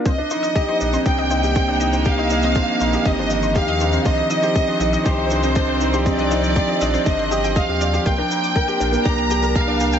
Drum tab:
SH |x-xxx-xxx-xxx-xx|x-xxx-xxx-xxx-xx|x-xxx-xxx-xxx-xx|x-xxx-xxx-xxx-xx|
BD |o---o---o---o---|o---o---o---o---|o---o---o---o---|o---o---o---o---|

SH |x-xxx-xxx-xxx-xx|
BD |o---o---o---o---|